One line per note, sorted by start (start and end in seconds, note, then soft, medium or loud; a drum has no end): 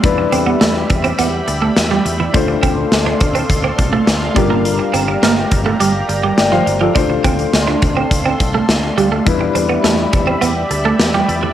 0.00 0.24 E2 loud
0.00 2.30 G3 medium
0.00 2.30 D4 medium
0.00 9.22 D5 medium
0.00 2.32 E5 medium
0.00 kick loud
0.00 closed hi-hat medium
0.04 2.31 E4 medium
0.04 2.32 G4 medium
0.04 2.31 B4 medium
0.04 2.32 B5 medium
0.18 muted clean electric guitar stroke soft
0.32 0.53 E2 medium
0.32 0.43 C4 medium
0.32 closed hi-hat medium
0.46 0.57 B3 medium
0.61 0.82 E2 medium
0.61 0.72 A3 medium
0.61 snare loud
0.61 closed hi-hat medium
0.90 1.11 E2 medium
0.90 muted clean electric guitar stroke soft
0.90 kick medium
0.90 closed hi-hat medium
1.04 1.15 C4 medium
1.04 closed hi-hat soft
1.19 1.40 E2 medium
1.19 1.29 B3 medium
1.19 closed hi-hat medium
1.48 1.69 D2 medium
1.48 muted clean electric guitar stroke soft
1.48 closed hi-hat medium
1.62 1.72 A3 medium
1.77 1.98 E2 medium
1.77 snare medium
1.77 closed hi-hat medium
1.91 2.01 G3 medium
2.05 2.26 E2 medium
2.05 muted clean electric guitar stroke soft
2.05 closed hi-hat medium
2.20 2.30 E3 medium
2.33 2.55 D2 medium
2.33 4.32 A3 medium
2.33 4.32 D4 medium
2.33 2.45 D4 medium
2.33 4.32 F4 medium
2.33 4.35 A4 medium
2.33 4.33 C5 medium
2.33 9.23 F5 medium
2.33 4.34 C6 medium
2.33 kick loud
2.33 closed hi-hat medium
2.48 muted clean electric guitar stroke soft
2.63 2.84 D2 loud
2.63 2.73 C4 medium
2.63 kick medium
2.63 closed hi-hat medium
2.92 3.13 D2 medium
2.92 snare loud
2.92 closed hi-hat medium
3.06 3.17 D4 medium
3.20 3.42 D2 medium
3.20 muted clean electric guitar stroke soft
3.20 kick medium
3.20 closed hi-hat medium
3.35 3.46 C4 medium
3.35 closed hi-hat soft
3.50 3.70 D2 medium
3.50 kick medium
3.50 closed hi-hat medium
3.64 3.75 C4 medium
3.78 3.99 C2 medium
3.78 muted clean electric guitar stroke soft
3.78 kick medium
3.78 closed hi-hat medium
3.93 4.03 A3 medium
4.07 4.28 D2 medium
4.07 muted clean electric guitar stroke soft
4.07 snare loud
4.07 closed hi-hat medium
4.34 4.78 G1 medium
4.34 6.62 G3 medium
4.34 4.47 G3 medium
4.34 6.63 D4 medium
4.34 6.63 F4 medium
4.34 6.93 G4 medium
4.34 6.35 A#4 medium
4.34 6.93 A#5 medium
4.34 kick medium
4.34 closed hi-hat medium
4.50 4.61 A#3 medium
4.65 closed hi-hat medium
4.79 muted clean electric guitar stroke soft
4.94 5.15 G1 medium
4.94 5.04 C4 medium
4.94 closed hi-hat medium
5.08 5.19 D4 medium
5.22 5.43 G1 medium
5.22 5.33 A#3 medium
5.22 snare loud
5.22 closed hi-hat medium
5.51 5.72 G1 medium
5.51 muted clean electric guitar stroke soft
5.51 kick medium
5.51 closed hi-hat medium
5.66 5.76 A3 medium
5.80 6.01 G1 medium
5.80 5.91 G3 medium
5.80 closed hi-hat medium
6.09 6.30 G1 medium
6.09 muted clean electric guitar stroke soft
6.09 closed hi-hat medium
6.24 6.34 G3 medium
6.38 6.59 G1 medium
6.38 6.52 D5 soft
6.38 6.52 G5 medium
6.38 snare loud
6.38 closed hi-hat medium
6.52 6.63 F3 medium
6.52 6.80 C5 soft
6.52 6.80 F5 medium
6.66 6.88 G1 medium
6.66 muted clean electric guitar stroke soft
6.66 closed hi-hat medium
6.81 6.92 F3 medium
6.81 7.09 A4 soft
6.81 7.09 D5 medium
6.94 7.16 D2 medium
6.94 9.22 A3 medium
6.94 7.06 D4 medium
6.94 9.22 D4 medium
6.94 9.23 F4 medium
6.94 9.24 A4 medium
6.94 9.23 C5 medium
6.94 9.24 C6 medium
6.94 kick loud
6.94 closed hi-hat medium
7.10 muted clean electric guitar stroke soft
7.24 7.45 D2 medium
7.24 7.35 C4 medium
7.24 kick medium
7.24 closed hi-hat medium
7.39 closed hi-hat soft
7.53 7.74 D2 medium
7.53 snare loud
7.53 closed hi-hat medium
7.68 7.78 D4 medium
7.82 8.03 D2 medium
7.82 muted clean electric guitar stroke soft
7.82 kick medium
7.82 closed hi-hat medium
7.97 8.07 C4 medium
8.11 8.32 D2 medium
8.11 kick medium
8.11 closed hi-hat medium
8.26 8.36 C4 medium
8.40 8.61 C2 medium
8.40 muted clean electric guitar stroke soft
8.40 kick medium
8.40 closed hi-hat medium
8.55 8.65 A3 medium
8.68 8.89 D2 medium
8.68 muted clean electric guitar stroke soft
8.68 snare loud
8.68 closed hi-hat medium
8.98 9.18 D2 medium
8.98 9.08 G3 medium
8.98 closed hi-hat medium
9.12 9.22 A3 medium
9.25 9.47 E2 medium
9.25 11.53 G3 medium
9.25 11.53 D4 medium
9.25 11.53 E4 medium
9.25 11.53 G4 medium
9.25 11.53 B4 medium
9.25 11.53 D5 medium
9.25 11.53 E5 medium
9.25 11.53 B5 medium
9.25 kick loud
9.25 closed hi-hat medium
9.41 muted clean electric guitar stroke soft
9.55 9.76 E2 medium
9.55 9.66 C4 medium
9.55 closed hi-hat medium
9.69 9.80 B3 medium
9.84 10.05 E2 medium
9.84 9.95 A3 medium
9.84 snare loud
9.84 closed hi-hat medium
10.13 10.34 E2 medium
10.13 muted clean electric guitar stroke soft
10.13 kick medium
10.13 closed hi-hat medium
10.27 10.38 C4 medium
10.41 10.62 E2 medium
10.41 10.52 B3 medium
10.41 closed hi-hat medium
10.71 10.91 D2 medium
10.71 muted clean electric guitar stroke soft
10.71 closed hi-hat medium
10.85 10.96 A3 medium
10.99 11.20 E2 medium
10.99 snare loud
10.99 closed hi-hat medium
11.14 11.25 G3 medium
11.28 11.49 E2 medium
11.28 muted clean electric guitar stroke soft
11.28 closed hi-hat medium
11.43 11.53 E3 medium